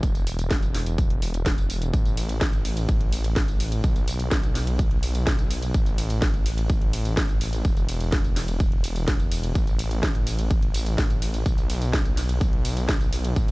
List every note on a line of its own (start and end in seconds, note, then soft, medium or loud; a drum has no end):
0.03 kick loud
0.03 closed hi-hat medium
0.03 tambourine soft
0.15 closed hi-hat soft
0.15 tambourine soft
0.27 open hi-hat loud
0.27 tambourine medium
0.39 closed hi-hat medium
0.39 tambourine soft
0.51 kick loud
0.51 snare loud
0.51 closed hi-hat medium
0.51 tambourine soft
0.63 closed hi-hat soft
0.63 tambourine soft
0.74 snare soft
0.74 open hi-hat loud
0.74 tambourine medium
0.86 closed hi-hat medium
0.86 tambourine soft
0.98 kick loud
0.98 closed hi-hat medium
0.98 tambourine soft
1.10 closed hi-hat soft
1.22 open hi-hat loud
1.22 tambourine medium
1.34 closed hi-hat medium
1.34 tambourine soft
1.46 kick loud
1.46 snare loud
1.46 closed hi-hat medium
1.46 tambourine soft
1.58 closed hi-hat soft
1.58 tambourine soft
1.70 open hi-hat loud
1.70 tambourine medium
1.82 closed hi-hat medium
1.82 tambourine soft
1.94 kick loud
1.94 closed hi-hat medium
1.94 tambourine soft
2.05 closed hi-hat soft
2.05 tambourine soft
2.17 open hi-hat loud
2.17 ride medium
2.17 tambourine medium
2.29 closed hi-hat medium
2.29 tambourine soft
2.41 kick loud
2.41 snare loud
2.41 closed hi-hat medium
2.41 tambourine soft
2.53 closed hi-hat soft
2.53 tambourine soft
2.65 open hi-hat loud
2.65 ride medium
2.65 tambourine medium
2.77 closed hi-hat medium
2.77 tambourine soft
2.89 kick loud
2.89 closed hi-hat medium
2.89 tambourine soft
3.01 closed hi-hat soft
3.12 open hi-hat loud
3.12 ride medium
3.12 tambourine medium
3.24 closed hi-hat medium
3.24 tambourine soft
3.36 kick loud
3.36 snare loud
3.36 closed hi-hat medium
3.36 tambourine soft
3.48 closed hi-hat soft
3.48 tambourine soft
3.60 open hi-hat loud
3.60 ride medium
3.60 tambourine medium
3.72 closed hi-hat medium
3.72 tambourine soft
3.84 5.72 B1 medium
3.84 kick loud
3.84 closed hi-hat medium
3.84 tambourine soft
3.96 closed hi-hat soft
3.96 tambourine soft
4.08 open hi-hat loud
4.08 ride medium
4.08 tambourine medium
4.20 closed hi-hat medium
4.20 tambourine soft
4.31 kick loud
4.31 snare loud
4.31 closed hi-hat medium
4.31 tambourine soft
4.43 closed hi-hat soft
4.43 tambourine soft
4.55 snare soft
4.55 open hi-hat loud
4.55 ride medium
4.55 tambourine medium
4.67 closed hi-hat medium
4.67 tambourine soft
4.79 kick loud
4.79 closed hi-hat medium
4.79 tambourine soft
4.91 closed hi-hat soft
5.03 open hi-hat loud
5.03 ride medium
5.03 tambourine medium
5.15 closed hi-hat medium
5.15 tambourine soft
5.27 kick loud
5.27 snare loud
5.27 closed hi-hat medium
5.27 tambourine soft
5.39 closed hi-hat soft
5.39 tambourine soft
5.51 open hi-hat loud
5.51 ride medium
5.51 tambourine medium
5.62 closed hi-hat medium
5.62 tambourine soft
5.74 kick loud
5.74 closed hi-hat medium
5.74 tambourine soft
5.86 closed hi-hat soft
5.86 tambourine soft
5.98 open hi-hat loud
5.98 ride medium
5.98 tambourine medium
6.10 closed hi-hat medium
6.10 tambourine soft
6.22 kick loud
6.22 snare loud
6.22 closed hi-hat medium
6.22 tambourine soft
6.34 closed hi-hat soft
6.34 tambourine soft
6.46 open hi-hat loud
6.46 ride medium
6.46 tambourine medium
6.58 closed hi-hat soft
6.58 tambourine soft
6.70 kick loud
6.70 closed hi-hat medium
6.70 tambourine soft
6.82 closed hi-hat soft
6.93 open hi-hat loud
6.93 ride medium
6.93 tambourine medium
7.05 closed hi-hat soft
7.05 tambourine soft
7.17 kick loud
7.17 snare loud
7.17 closed hi-hat medium
7.17 tambourine soft
7.29 closed hi-hat soft
7.29 tambourine soft
7.41 open hi-hat loud
7.41 ride medium
7.41 tambourine medium
7.53 closed hi-hat soft
7.53 tambourine soft
7.65 kick loud
7.65 closed hi-hat medium
7.65 tambourine soft
7.77 closed hi-hat soft
7.77 tambourine soft
7.89 open hi-hat loud
7.89 ride medium
7.89 tambourine medium
8.00 closed hi-hat soft
8.00 tambourine soft
8.12 kick loud
8.12 snare loud
8.12 closed hi-hat soft
8.12 tambourine soft
8.24 closed hi-hat soft
8.24 tambourine soft
8.36 snare soft
8.36 open hi-hat loud
8.36 ride medium
8.36 tambourine medium
8.48 closed hi-hat medium
8.48 tambourine soft
8.60 kick loud
8.60 closed hi-hat medium
8.60 tambourine soft
8.72 closed hi-hat soft
8.84 open hi-hat loud
8.84 ride medium
8.84 tambourine medium
8.96 closed hi-hat soft
8.96 tambourine soft
9.08 kick loud
9.08 snare loud
9.08 closed hi-hat medium
9.08 tambourine soft
9.20 closed hi-hat soft
9.20 tambourine soft
9.32 open hi-hat loud
9.32 ride medium
9.32 tambourine medium
9.44 closed hi-hat soft
9.44 tambourine soft
9.55 kick loud
9.55 closed hi-hat medium
9.55 tambourine soft
9.67 closed hi-hat soft
9.67 tambourine soft
9.79 open hi-hat loud
9.79 ride medium
9.79 tambourine medium
9.91 closed hi-hat soft
9.91 tambourine soft
10.03 kick loud
10.03 snare loud
10.03 closed hi-hat soft
10.03 tambourine soft
10.15 closed hi-hat soft
10.15 tambourine soft
10.27 open hi-hat loud
10.27 ride medium
10.27 tambourine medium
10.39 closed hi-hat soft
10.39 tambourine soft
10.51 kick loud
10.51 closed hi-hat medium
10.51 tambourine soft
10.62 closed hi-hat soft
10.74 open hi-hat loud
10.74 ride medium
10.74 tambourine medium
10.86 closed hi-hat medium
10.86 tambourine soft
10.98 kick loud
10.98 snare loud
10.98 closed hi-hat medium
10.98 tambourine soft
11.10 closed hi-hat soft
11.10 tambourine soft
11.22 open hi-hat loud
11.22 ride medium
11.22 tambourine medium
11.34 closed hi-hat medium
11.34 tambourine soft
11.46 13.34 B1 medium
11.46 kick loud
11.46 closed hi-hat medium
11.46 tambourine soft
11.58 closed hi-hat soft
11.58 tambourine soft
11.70 open hi-hat loud
11.70 ride medium
11.70 tambourine medium
11.82 closed hi-hat medium
11.82 tambourine soft
11.93 kick loud
11.93 snare loud
11.93 closed hi-hat medium
11.93 tambourine soft
12.05 closed hi-hat soft
12.05 tambourine soft
12.17 snare soft
12.17 open hi-hat loud
12.17 ride medium
12.17 tambourine medium
12.29 closed hi-hat medium
12.29 tambourine soft
12.41 kick loud
12.41 closed hi-hat medium
12.41 tambourine soft
12.53 closed hi-hat soft
12.65 open hi-hat loud
12.65 ride medium
12.65 tambourine medium
12.77 closed hi-hat medium
12.77 tambourine soft
12.89 kick loud
12.89 snare loud
12.89 closed hi-hat medium
12.89 tambourine soft
13.01 closed hi-hat soft
13.01 tambourine soft
13.13 open hi-hat loud
13.13 ride medium
13.13 tambourine medium
13.25 closed hi-hat medium
13.25 tambourine soft
13.36 kick loud
13.36 closed hi-hat medium
13.36 tambourine soft
13.48 closed hi-hat soft